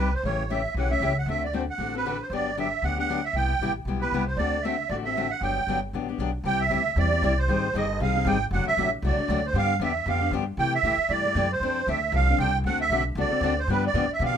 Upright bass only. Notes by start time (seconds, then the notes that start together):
Already playing: C2
0.23 A1
0.74 B1
1.00 C#2
1.26 D2
1.78 A1
2.30 G1
2.82 D2
3.33 C2
3.59 A1
3.85 B1
4.12 C2
4.37 D2
4.89 A1
5.41 G1
5.67 G1
5.93 A1
6.18 B1
6.44 C2
6.70 D2
6.96 E2
7.22 C2
7.48 G#1
7.74 G1
8.00 C2
8.25 G#1
8.51 F#1
8.66 muted upright bass stroke
8.77 A1
9.02 C2
9.17 muted upright bass stroke
9.28 D2
9.53 G2
9.80 E2
10.06 F2
10.31 G2
10.57 C3
10.83 A2
10.97 muted upright bass stroke
11.09 G2
11.35 F#2
11.60 F2
11.87 D2
12.12 C2
12.38 C2
12.64 D2
12.89 B1
13.15 C2
13.30 muted upright bass stroke
13.41 D2
13.67 G2
13.94 A2
14.07 muted upright bass stroke
14.19 B2